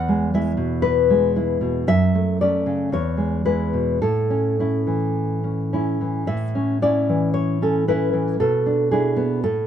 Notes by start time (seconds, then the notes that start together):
Already playing: E2 F#5
0.08 G#3
0.34 G#3 E4 E5
0.57 B2
0.82 B4
1.10 G#3
1.36 G#3 E4
1.61 B2
1.87 F#2 E5
2.15 A3
2.41 A3 C#4 D5
2.66 C#3
2.92 E2 C#5
3.17 G#3
3.45 G#3 E4 B4
3.73 B2
4.02 A2 A4
4.30 C#4
4.59 C#4 E4
4.87 E3
5.44 C#4
5.73 C#4 E4
6.01 E3
6.27 A2 E5
6.55 C#4
6.82 C#4 E4 D5
7.09 E3
7.34 C#5
7.62 C#4 A4
7.88 C#4 E4 B4
8.13 E3
8.40 B2 A4
8.66 D4
8.91 D4 E4 G#4
9.16 B3
9.44 A2 A4